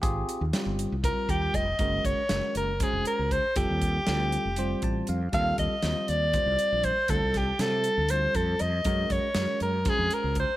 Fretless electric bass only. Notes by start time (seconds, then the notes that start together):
0.03 G#1
0.41 D#2
0.66 G1
0.92 C2
1.29 D#2
1.54 F1
1.79 F#1
2.05 F#1
2.18 muted fretless electric bass stroke
2.31 F#1
2.55 F#1
2.93 F1
3.19 C#2
3.44 muted fretless electric bass stroke
3.56 F1
3.70 D#2
4.08 D2
4.45 F1
4.83 A1
5.09 F2
5.33 D#2
5.59 D#2
5.71 muted fretless electric bass stroke
5.83 D#2
6.09 D#2
6.46 C2
6.72 A#1
7.09 D2
7.22 C2
7.59 C3
7.98 D2
8.35 F2
8.61 F2
8.85 F#2
9.11 F#2
9.23 muted fretless electric bass stroke
9.35 F#2
9.61 F#2
9.99 F2
10.24 C#2